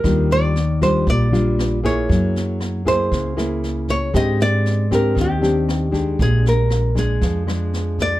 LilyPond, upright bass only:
\new Staff \with { instrumentName = "Upright bass" } { \clef bass \time 4/4 \key ees \major \tempo 4 = 117 ees,2 bes,,2 | ges,2 des,2 | aes,2 ees,2 | bes,,2 f,2 | }